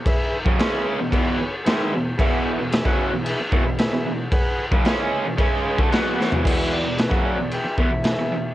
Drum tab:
CC |x---x---x---x---|x---x---x---x---|x---x---x---x---|x---x---x---x---|
SD |----o-------o---|----o-------o---|----o-------o-o-|----o-------o---|
FT |----------------|----------------|---------------o|----------------|
BD |o--o----o-------|o----o----o-----|o--o----o--o----|o----o----o-----|